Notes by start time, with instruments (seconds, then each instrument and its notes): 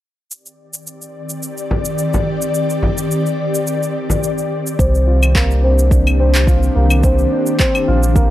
0.31 ambient pad D#3 C4 G4 D5, shaker
0.46 shaker
0.73 shaker
0.87 shaker
1.02 shaker
1.29 shaker
1.43 shaker
1.57 shaker
1.71 frame drum
1.85 shaker
1.98 shaker
2.13 frame drum, shaker
2.42 shaker
2.54 shaker
2.70 shaker
2.83 frame drum
2.98 shaker
3.11 shaker
3.26 shaker
3.54 shaker
3.67 shaker
3.83 shaker
4.10 frame drum, shaker
4.23 shaker
4.38 shaker
4.67 shaker
4.78 analog synth bass C2, ambient pad D#3 C4 D4 G4, kora C4, kick, shaker
4.95 shaker
5.07 kora F4
5.23 claves, shaker
5.35 kora A#3, kick, clap, shaker
5.51 shaker
5.63 kora C4
5.79 shaker
5.91 kora D4, kick, shaker
6.07 claves, shaker
6.19 kora C4
6.35 clap, shaker
6.47 kora F4, kick, shaker
6.63 shaker
6.75 analog synth bass C2, kora A#3
6.90 claves, shaker
7.03 kora C4, kick, shaker
7.18 shaker
7.32 kora D4
7.46 shaker
7.59 kora C4, kick, clap, shaker
7.75 claves, shaker
7.88 analog synth bass A#1, kora F4
8.03 shaker
8.15 kora A#3, kick, shaker